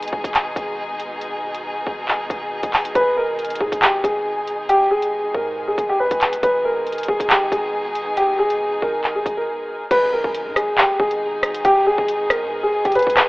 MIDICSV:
0, 0, Header, 1, 6, 480
1, 0, Start_track
1, 0, Key_signature, 5, "minor"
1, 0, Tempo, 434783
1, 1340, Time_signature, 4, 2, 24, 8
1, 14669, End_track
2, 0, Start_track
2, 0, Title_t, "Grand piano"
2, 0, Program_c, 0, 0
2, 3260, Note_on_c, 0, 71, 104
2, 3470, Note_off_c, 0, 71, 0
2, 3500, Note_on_c, 0, 70, 85
2, 3951, Note_off_c, 0, 70, 0
2, 3980, Note_on_c, 0, 68, 76
2, 4190, Note_off_c, 0, 68, 0
2, 4219, Note_on_c, 0, 67, 84
2, 4429, Note_off_c, 0, 67, 0
2, 4459, Note_on_c, 0, 68, 82
2, 5136, Note_off_c, 0, 68, 0
2, 5181, Note_on_c, 0, 67, 111
2, 5390, Note_off_c, 0, 67, 0
2, 5420, Note_on_c, 0, 68, 91
2, 5871, Note_off_c, 0, 68, 0
2, 5901, Note_on_c, 0, 70, 72
2, 6246, Note_off_c, 0, 70, 0
2, 6266, Note_on_c, 0, 68, 81
2, 6476, Note_off_c, 0, 68, 0
2, 6507, Note_on_c, 0, 67, 83
2, 6605, Note_off_c, 0, 67, 0
2, 6621, Note_on_c, 0, 71, 87
2, 7072, Note_off_c, 0, 71, 0
2, 7099, Note_on_c, 0, 71, 92
2, 7309, Note_off_c, 0, 71, 0
2, 7340, Note_on_c, 0, 70, 86
2, 7791, Note_off_c, 0, 70, 0
2, 7820, Note_on_c, 0, 68, 81
2, 8029, Note_off_c, 0, 68, 0
2, 8060, Note_on_c, 0, 67, 85
2, 8270, Note_off_c, 0, 67, 0
2, 8301, Note_on_c, 0, 68, 83
2, 8977, Note_off_c, 0, 68, 0
2, 9022, Note_on_c, 0, 67, 96
2, 9231, Note_off_c, 0, 67, 0
2, 9259, Note_on_c, 0, 68, 90
2, 9711, Note_off_c, 0, 68, 0
2, 9740, Note_on_c, 0, 70, 78
2, 10085, Note_off_c, 0, 70, 0
2, 10106, Note_on_c, 0, 68, 72
2, 10316, Note_off_c, 0, 68, 0
2, 10346, Note_on_c, 0, 70, 74
2, 10904, Note_off_c, 0, 70, 0
2, 10940, Note_on_c, 0, 71, 107
2, 11150, Note_off_c, 0, 71, 0
2, 11180, Note_on_c, 0, 70, 87
2, 11631, Note_off_c, 0, 70, 0
2, 11660, Note_on_c, 0, 68, 77
2, 11870, Note_off_c, 0, 68, 0
2, 11899, Note_on_c, 0, 67, 88
2, 12109, Note_off_c, 0, 67, 0
2, 12139, Note_on_c, 0, 68, 84
2, 12816, Note_off_c, 0, 68, 0
2, 12860, Note_on_c, 0, 67, 114
2, 13070, Note_off_c, 0, 67, 0
2, 13100, Note_on_c, 0, 68, 92
2, 13551, Note_off_c, 0, 68, 0
2, 13581, Note_on_c, 0, 70, 76
2, 13926, Note_off_c, 0, 70, 0
2, 13945, Note_on_c, 0, 68, 80
2, 14156, Note_off_c, 0, 68, 0
2, 14187, Note_on_c, 0, 67, 84
2, 14286, Note_off_c, 0, 67, 0
2, 14300, Note_on_c, 0, 71, 93
2, 14669, Note_off_c, 0, 71, 0
2, 14669, End_track
3, 0, Start_track
3, 0, Title_t, "String section"
3, 0, Program_c, 1, 48
3, 0, Note_on_c, 1, 47, 85
3, 0, Note_on_c, 1, 56, 75
3, 0, Note_on_c, 1, 63, 76
3, 0, Note_on_c, 1, 68, 95
3, 3216, Note_off_c, 1, 56, 0
3, 3260, Note_on_c, 1, 56, 78
3, 7056, Note_off_c, 1, 47, 0
3, 7056, Note_off_c, 1, 63, 0
3, 7056, Note_off_c, 1, 68, 0
3, 7100, Note_on_c, 1, 63, 79
3, 7100, Note_on_c, 1, 68, 93
3, 7101, Note_on_c, 1, 47, 84
3, 10896, Note_off_c, 1, 56, 0
3, 10902, Note_off_c, 1, 47, 0
3, 10902, Note_off_c, 1, 63, 0
3, 10902, Note_off_c, 1, 68, 0
3, 10940, Note_on_c, 1, 47, 86
3, 10940, Note_on_c, 1, 56, 78
3, 10940, Note_on_c, 1, 63, 81
3, 10940, Note_on_c, 1, 68, 96
3, 14669, Note_off_c, 1, 47, 0
3, 14669, Note_off_c, 1, 56, 0
3, 14669, Note_off_c, 1, 63, 0
3, 14669, Note_off_c, 1, 68, 0
3, 14669, End_track
4, 0, Start_track
4, 0, Title_t, "808-style bass"
4, 0, Program_c, 2, 38
4, 0, Note_on_c, 2, 32, 112
4, 111, Note_off_c, 2, 32, 0
4, 140, Note_on_c, 2, 32, 103
4, 262, Note_off_c, 2, 32, 0
4, 267, Note_on_c, 2, 32, 100
4, 606, Note_off_c, 2, 32, 0
4, 620, Note_on_c, 2, 32, 105
4, 2016, Note_off_c, 2, 32, 0
4, 2060, Note_on_c, 2, 32, 102
4, 2521, Note_off_c, 2, 32, 0
4, 2540, Note_on_c, 2, 32, 109
4, 2893, Note_off_c, 2, 32, 0
4, 2907, Note_on_c, 2, 32, 106
4, 3147, Note_on_c, 2, 35, 103
4, 3164, Note_off_c, 2, 32, 0
4, 3254, Note_off_c, 2, 35, 0
4, 3260, Note_on_c, 2, 32, 111
4, 3951, Note_off_c, 2, 32, 0
4, 3980, Note_on_c, 2, 44, 102
4, 4102, Note_off_c, 2, 44, 0
4, 4107, Note_on_c, 2, 32, 99
4, 4446, Note_off_c, 2, 32, 0
4, 4460, Note_on_c, 2, 32, 106
4, 5856, Note_off_c, 2, 32, 0
4, 5900, Note_on_c, 2, 44, 103
4, 6361, Note_off_c, 2, 44, 0
4, 6380, Note_on_c, 2, 32, 112
4, 6620, Note_on_c, 2, 39, 101
4, 6636, Note_off_c, 2, 32, 0
4, 6741, Note_off_c, 2, 39, 0
4, 6748, Note_on_c, 2, 32, 105
4, 6988, Note_on_c, 2, 39, 100
4, 7004, Note_off_c, 2, 32, 0
4, 7095, Note_off_c, 2, 39, 0
4, 7100, Note_on_c, 2, 32, 114
4, 7791, Note_off_c, 2, 32, 0
4, 7820, Note_on_c, 2, 32, 101
4, 7942, Note_off_c, 2, 32, 0
4, 7948, Note_on_c, 2, 32, 100
4, 8286, Note_off_c, 2, 32, 0
4, 8300, Note_on_c, 2, 32, 107
4, 9696, Note_off_c, 2, 32, 0
4, 9740, Note_on_c, 2, 32, 104
4, 10201, Note_off_c, 2, 32, 0
4, 10220, Note_on_c, 2, 32, 102
4, 10450, Note_off_c, 2, 32, 0
4, 10940, Note_on_c, 2, 32, 112
4, 11292, Note_off_c, 2, 32, 0
4, 11307, Note_on_c, 2, 32, 107
4, 11547, Note_on_c, 2, 44, 99
4, 11564, Note_off_c, 2, 32, 0
4, 11660, Note_on_c, 2, 32, 101
4, 11676, Note_off_c, 2, 44, 0
4, 11781, Note_off_c, 2, 32, 0
4, 12140, Note_on_c, 2, 32, 107
4, 12831, Note_off_c, 2, 32, 0
4, 12860, Note_on_c, 2, 32, 107
4, 13212, Note_off_c, 2, 32, 0
4, 13228, Note_on_c, 2, 32, 106
4, 13707, Note_on_c, 2, 44, 97
4, 13724, Note_off_c, 2, 32, 0
4, 14163, Note_off_c, 2, 44, 0
4, 14188, Note_on_c, 2, 32, 105
4, 14418, Note_off_c, 2, 32, 0
4, 14427, Note_on_c, 2, 32, 109
4, 14669, Note_off_c, 2, 32, 0
4, 14669, End_track
5, 0, Start_track
5, 0, Title_t, "Impact"
5, 0, Program_c, 3, 103
5, 10940, Note_on_c, 3, 60, 89
5, 12860, Note_off_c, 3, 60, 0
5, 14669, End_track
6, 0, Start_track
6, 0, Title_t, "Drums"
6, 27, Note_on_c, 9, 42, 73
6, 84, Note_off_c, 9, 42, 0
6, 84, Note_on_c, 9, 42, 84
6, 140, Note_on_c, 9, 36, 94
6, 194, Note_off_c, 9, 42, 0
6, 250, Note_off_c, 9, 36, 0
6, 267, Note_on_c, 9, 36, 86
6, 273, Note_on_c, 9, 42, 99
6, 378, Note_off_c, 9, 36, 0
6, 379, Note_on_c, 9, 39, 118
6, 383, Note_off_c, 9, 42, 0
6, 386, Note_on_c, 9, 42, 75
6, 490, Note_off_c, 9, 39, 0
6, 497, Note_off_c, 9, 42, 0
6, 620, Note_on_c, 9, 36, 100
6, 627, Note_on_c, 9, 42, 77
6, 730, Note_off_c, 9, 36, 0
6, 737, Note_off_c, 9, 42, 0
6, 1100, Note_on_c, 9, 42, 70
6, 1210, Note_off_c, 9, 42, 0
6, 1340, Note_on_c, 9, 42, 77
6, 1450, Note_off_c, 9, 42, 0
6, 1705, Note_on_c, 9, 42, 71
6, 1816, Note_off_c, 9, 42, 0
6, 2060, Note_on_c, 9, 36, 94
6, 2170, Note_off_c, 9, 36, 0
6, 2299, Note_on_c, 9, 39, 74
6, 2410, Note_off_c, 9, 39, 0
6, 2540, Note_on_c, 9, 36, 103
6, 2547, Note_on_c, 9, 42, 72
6, 2650, Note_off_c, 9, 36, 0
6, 2657, Note_off_c, 9, 42, 0
6, 2905, Note_on_c, 9, 42, 77
6, 2907, Note_on_c, 9, 36, 92
6, 3015, Note_off_c, 9, 42, 0
6, 3018, Note_off_c, 9, 36, 0
6, 3019, Note_on_c, 9, 39, 112
6, 3020, Note_on_c, 9, 46, 50
6, 3129, Note_off_c, 9, 39, 0
6, 3131, Note_off_c, 9, 46, 0
6, 3147, Note_on_c, 9, 42, 89
6, 3257, Note_off_c, 9, 42, 0
6, 3260, Note_on_c, 9, 36, 120
6, 3260, Note_on_c, 9, 42, 77
6, 3370, Note_off_c, 9, 36, 0
6, 3370, Note_off_c, 9, 42, 0
6, 3740, Note_on_c, 9, 42, 50
6, 3804, Note_off_c, 9, 42, 0
6, 3804, Note_on_c, 9, 42, 61
6, 3867, Note_off_c, 9, 42, 0
6, 3867, Note_on_c, 9, 42, 70
6, 3924, Note_off_c, 9, 42, 0
6, 3924, Note_on_c, 9, 42, 82
6, 3980, Note_on_c, 9, 36, 96
6, 4034, Note_off_c, 9, 42, 0
6, 4091, Note_off_c, 9, 36, 0
6, 4107, Note_on_c, 9, 36, 86
6, 4113, Note_on_c, 9, 42, 98
6, 4218, Note_off_c, 9, 36, 0
6, 4220, Note_on_c, 9, 39, 123
6, 4224, Note_off_c, 9, 42, 0
6, 4227, Note_on_c, 9, 42, 73
6, 4330, Note_off_c, 9, 39, 0
6, 4337, Note_off_c, 9, 42, 0
6, 4460, Note_on_c, 9, 36, 100
6, 4467, Note_on_c, 9, 42, 79
6, 4570, Note_off_c, 9, 36, 0
6, 4577, Note_off_c, 9, 42, 0
6, 4940, Note_on_c, 9, 42, 72
6, 5051, Note_off_c, 9, 42, 0
6, 5180, Note_on_c, 9, 42, 77
6, 5290, Note_off_c, 9, 42, 0
6, 5545, Note_on_c, 9, 42, 69
6, 5656, Note_off_c, 9, 42, 0
6, 5900, Note_on_c, 9, 36, 95
6, 6011, Note_off_c, 9, 36, 0
6, 6380, Note_on_c, 9, 36, 98
6, 6387, Note_on_c, 9, 42, 72
6, 6491, Note_off_c, 9, 36, 0
6, 6497, Note_off_c, 9, 42, 0
6, 6745, Note_on_c, 9, 42, 82
6, 6748, Note_on_c, 9, 36, 93
6, 6855, Note_off_c, 9, 42, 0
6, 6858, Note_off_c, 9, 36, 0
6, 6859, Note_on_c, 9, 39, 112
6, 6860, Note_on_c, 9, 42, 73
6, 6970, Note_off_c, 9, 39, 0
6, 6971, Note_off_c, 9, 42, 0
6, 6987, Note_on_c, 9, 42, 90
6, 7097, Note_off_c, 9, 42, 0
6, 7100, Note_on_c, 9, 36, 117
6, 7100, Note_on_c, 9, 42, 80
6, 7210, Note_off_c, 9, 36, 0
6, 7210, Note_off_c, 9, 42, 0
6, 7580, Note_on_c, 9, 42, 49
6, 7644, Note_off_c, 9, 42, 0
6, 7644, Note_on_c, 9, 42, 60
6, 7708, Note_off_c, 9, 42, 0
6, 7708, Note_on_c, 9, 42, 74
6, 7764, Note_off_c, 9, 42, 0
6, 7764, Note_on_c, 9, 42, 86
6, 7820, Note_on_c, 9, 36, 93
6, 7874, Note_off_c, 9, 42, 0
6, 7931, Note_off_c, 9, 36, 0
6, 7947, Note_on_c, 9, 36, 85
6, 7953, Note_on_c, 9, 42, 97
6, 8058, Note_off_c, 9, 36, 0
6, 8060, Note_on_c, 9, 39, 121
6, 8064, Note_off_c, 9, 42, 0
6, 8067, Note_on_c, 9, 42, 74
6, 8170, Note_off_c, 9, 39, 0
6, 8177, Note_off_c, 9, 42, 0
6, 8300, Note_on_c, 9, 36, 97
6, 8307, Note_on_c, 9, 42, 76
6, 8410, Note_off_c, 9, 36, 0
6, 8417, Note_off_c, 9, 42, 0
6, 8780, Note_on_c, 9, 42, 72
6, 8891, Note_off_c, 9, 42, 0
6, 9020, Note_on_c, 9, 42, 77
6, 9130, Note_off_c, 9, 42, 0
6, 9385, Note_on_c, 9, 42, 69
6, 9496, Note_off_c, 9, 42, 0
6, 9740, Note_on_c, 9, 36, 94
6, 9850, Note_off_c, 9, 36, 0
6, 9979, Note_on_c, 9, 39, 74
6, 10090, Note_off_c, 9, 39, 0
6, 10220, Note_on_c, 9, 36, 98
6, 10227, Note_on_c, 9, 42, 71
6, 10330, Note_off_c, 9, 36, 0
6, 10337, Note_off_c, 9, 42, 0
6, 10940, Note_on_c, 9, 36, 125
6, 10940, Note_on_c, 9, 42, 80
6, 10940, Note_on_c, 9, 49, 104
6, 11050, Note_off_c, 9, 36, 0
6, 11050, Note_off_c, 9, 42, 0
6, 11050, Note_off_c, 9, 49, 0
6, 11308, Note_on_c, 9, 36, 92
6, 11418, Note_off_c, 9, 36, 0
6, 11421, Note_on_c, 9, 42, 87
6, 11531, Note_off_c, 9, 42, 0
6, 11659, Note_on_c, 9, 37, 91
6, 11666, Note_on_c, 9, 42, 84
6, 11770, Note_off_c, 9, 37, 0
6, 11777, Note_off_c, 9, 42, 0
6, 11899, Note_on_c, 9, 39, 125
6, 12009, Note_off_c, 9, 39, 0
6, 12140, Note_on_c, 9, 36, 106
6, 12250, Note_off_c, 9, 36, 0
6, 12265, Note_on_c, 9, 42, 63
6, 12375, Note_off_c, 9, 42, 0
6, 12619, Note_on_c, 9, 37, 94
6, 12620, Note_on_c, 9, 42, 75
6, 12729, Note_off_c, 9, 37, 0
6, 12730, Note_off_c, 9, 42, 0
6, 12746, Note_on_c, 9, 42, 91
6, 12856, Note_off_c, 9, 42, 0
6, 12859, Note_on_c, 9, 36, 121
6, 12859, Note_on_c, 9, 42, 81
6, 12970, Note_off_c, 9, 36, 0
6, 12970, Note_off_c, 9, 42, 0
6, 13228, Note_on_c, 9, 36, 92
6, 13338, Note_off_c, 9, 36, 0
6, 13341, Note_on_c, 9, 42, 92
6, 13451, Note_off_c, 9, 42, 0
6, 13580, Note_on_c, 9, 37, 97
6, 13586, Note_on_c, 9, 42, 82
6, 13690, Note_off_c, 9, 37, 0
6, 13697, Note_off_c, 9, 42, 0
6, 14187, Note_on_c, 9, 42, 53
6, 14188, Note_on_c, 9, 36, 87
6, 14262, Note_off_c, 9, 42, 0
6, 14262, Note_on_c, 9, 42, 53
6, 14298, Note_off_c, 9, 36, 0
6, 14300, Note_off_c, 9, 42, 0
6, 14300, Note_on_c, 9, 42, 47
6, 14342, Note_off_c, 9, 42, 0
6, 14342, Note_on_c, 9, 42, 54
6, 14380, Note_off_c, 9, 42, 0
6, 14380, Note_on_c, 9, 42, 62
6, 14427, Note_on_c, 9, 36, 93
6, 14460, Note_off_c, 9, 42, 0
6, 14460, Note_on_c, 9, 42, 75
6, 14538, Note_off_c, 9, 36, 0
6, 14539, Note_on_c, 9, 37, 92
6, 14539, Note_on_c, 9, 39, 114
6, 14540, Note_off_c, 9, 42, 0
6, 14540, Note_on_c, 9, 42, 78
6, 14649, Note_off_c, 9, 37, 0
6, 14649, Note_off_c, 9, 39, 0
6, 14651, Note_off_c, 9, 42, 0
6, 14669, End_track
0, 0, End_of_file